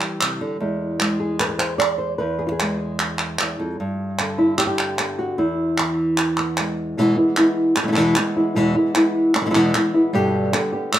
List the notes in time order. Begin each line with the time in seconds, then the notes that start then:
Already playing: E3 G3 E4
0.01 G4, clap
0.21 C3, clap
0.41 D3
0.60 E2 G#3 E4 G#4
1.00 G#3, clap
1.20 G#4
1.40 B4, clap
1.49 B4
1.58 C5, clap
1.78 D5, clap
1.98 C5
2.18 E2 B4
2.39 G#4
2.47 F4
2.52 G#4
2.60 G#3, clap
2.99 clap
3.19 clap
3.39 E2, clap
3.60 F2
3.80 G2
4.19 D3, clap
4.38 E4
4.58 G4, clap
4.67 G4
4.78 clap
4.98 B3, clap
5.19 F#4
5.38 E2 E4
5.78 E3, clap
6.18 clap
6.37 B3, clap
6.57 G#3, clap
6.97 E2 B2 E3 G#3 B3 E4
7.17 E3 G#3 B3 E4
7.36 E3 G#3 B3 E4, clap
7.76 muted nylon-string guitar stroke, clap
7.83 B2 E3 G#3 B3 E4
7.88 B2 E3 G#3 B3 E4
7.92 B2 E3 G#3 B3 E4, clap
7.97 E2 B2 E3 G#3 B3 E4
8.16 E3 G#3 B3 E4, clap
8.36 E3 G#3 B3 E4
8.55 E2 B2 E3 G#3 B3 E4
8.76 E3 G#3 B3 E4
8.95 E3 G#3 B3 E4, clap
9.35 muted nylon-string guitar stroke, clap
9.41 B2 E3 G#3 B3 E4
9.46 B2 E3 G#3 B3 E4
9.50 B2 E3 G#3 B3 E4
9.54 E2 B2 E3 G#3 B3 E4, clap
9.74 E3 G#3 B3 E4, clap
9.94 E3 G#3 B3 E4
10.13 G2 B2 D3 G3 B3 G4
10.53 D3 G3 B3 G4, clap
10.73 D3 G3 B3 G4
10.93 muted nylon-string guitar stroke, clap